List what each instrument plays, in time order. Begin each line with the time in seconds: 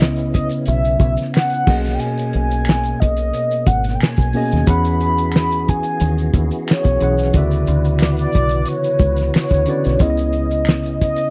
Already playing: fingered electric bass C#2, tine electric piano C#3 B3 E4 D#5, tonewheel organ C#3 B3 C#4 E4, soft synth lead D#5
0.02 finger snap, snare
0.16 closed hi-hat, maracas
0.34 soft synth lead D#5, kick, closed hi-hat
0.49 closed hi-hat, maracas
0.66 fingered electric bass B1, soft synth lead E5, closed hi-hat, maracas
0.84 closed hi-hat, maracas
0.99 fingered electric bass B1, soft synth lead E5, kick, closed hi-hat, maracas
1.17 closed hi-hat, maracas
1.21 snare
1.33 soft synth lead F#5, finger snap, snare, maracas
1.37 finger snap
1.50 closed hi-hat
1.54 maracas
1.67 fingered electric bass B1, tine electric piano B2 A#3 C#4 G#4 D#5, tonewheel organ B2 A#3, kick, crash
1.85 snare, closed hi-hat, maracas
1.95 soft synth lead G5
1.99 soft synth lead G#5, closed hi-hat, maracas
2.18 closed hi-hat, maracas
2.33 fingered electric bass B1, closed hi-hat
2.51 closed hi-hat, maracas
2.65 finger snap, maracas
2.69 finger snap, snare
2.83 closed hi-hat, maracas
3.00 fingered electric bass B1, soft synth lead D#5, kick, closed hi-hat
3.16 closed hi-hat, maracas
3.33 closed hi-hat, maracas
3.51 closed hi-hat, maracas
3.66 fingered electric bass G#1, soft synth lead F#5, kick, closed hi-hat, maracas
3.84 closed hi-hat, maracas
3.88 snare
3.95 soft synth lead G5
4.01 soft synth lead G#5, finger snap, muted fingered electric bass stroke, snare, maracas
4.04 finger snap
4.16 fingered electric bass B1, kick, closed hi-hat
4.20 maracas
4.33 tine electric piano B2 A#3 C#4 G#4 D#5, open hi-hat
4.52 fingered electric bass D#2, snare, closed hi-hat, maracas
4.67 fingered electric bass E2, tine electric piano E3 C#4 G#4 F#5, tonewheel organ B3 E4 F#4 G#4, soft synth lead B5, kick, closed hi-hat, maracas
4.84 closed hi-hat, maracas
5.00 closed hi-hat
5.18 closed hi-hat, maracas
5.32 finger snap, maracas
5.36 finger snap, snare
5.51 closed hi-hat, maracas
5.68 soft synth lead G#5, kick, closed hi-hat
5.83 closed hi-hat, maracas
6.00 fingered electric bass D#2, closed hi-hat, maracas
6.18 closed hi-hat, maracas
6.33 fingered electric bass D#2, kick, closed hi-hat, maracas
6.51 closed hi-hat, maracas
6.68 soft synth lead C#5, finger snap, snare, maracas
6.72 finger snap
6.84 fingered electric bass B1, kick, closed hi-hat, maracas
7.00 fingered electric bass B1, tine electric piano E3 C#4 G#4 F#5, closed hi-hat
7.18 closed hi-hat, maracas
7.22 snare
7.33 fingered electric bass D2, tine electric piano C#3 D3 F#4 B4, tonewheel organ E3 E4 B4, soft synth lead D5, kick, closed hi-hat, maracas
7.38 tine electric piano E5
7.51 closed hi-hat, maracas
7.67 fingered electric bass D2, closed hi-hat, maracas
7.85 closed hi-hat, maracas
7.99 soft synth lead D5, finger snap, snare, maracas
8.03 finger snap
8.17 soft synth lead D5, closed hi-hat, maracas
8.32 fingered electric bass B1, kick, closed hi-hat, maracas
8.49 closed hi-hat, maracas
8.65 soft synth lead C#5, closed hi-hat, maracas
8.84 closed hi-hat, maracas
8.99 fingered electric bass C#2, kick, closed hi-hat, maracas
9.16 closed hi-hat, maracas
9.21 snare
9.34 soft synth lead C#5, finger snap, muted fingered electric bass stroke, snare, maracas
9.37 finger snap
9.49 fingered electric bass D2, kick, closed hi-hat
9.54 maracas
9.66 tine electric piano D3 C#4 F#4 B4 D5, closed hi-hat
9.84 fingered electric bass B1, snare, closed hi-hat, maracas
9.99 fingered electric bass C#2, tine electric piano C#3 B3 E4, tonewheel organ C#3 B3 C#4, soft synth lead D#5, kick, closed hi-hat, maracas
10.04 tine electric piano C#5
10.10 tine electric piano D#5
10.17 closed hi-hat, maracas
10.33 closed hi-hat
10.51 closed hi-hat, maracas
10.65 finger snap, snare, maracas
10.69 finger snap
10.83 closed hi-hat, maracas
11.01 soft synth lead D#5, kick, closed hi-hat
11.16 closed hi-hat, maracas